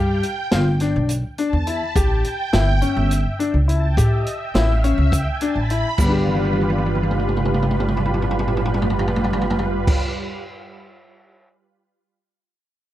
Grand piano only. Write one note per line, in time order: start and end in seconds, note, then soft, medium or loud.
0.00 0.24 G4 medium
0.52 0.67 F4 medium
0.81 1.10 D4 medium
1.39 1.53 D4 medium
1.67 1.82 E4 medium
1.96 2.25 G4 medium
2.53 2.68 E4 medium
2.82 3.11 C#4 medium
3.39 3.54 D4 medium
3.68 3.83 E4 medium
3.97 4.26 G4 medium
4.55 4.70 E4 medium
4.84 5.13 C#4 medium
5.42 5.56 D4 medium
5.71 5.85 E4 medium
6.00 9.96 G3 medium
6.00 9.98 B3 medium
6.08 10.00 D4 medium
6.12 10.02 G4 medium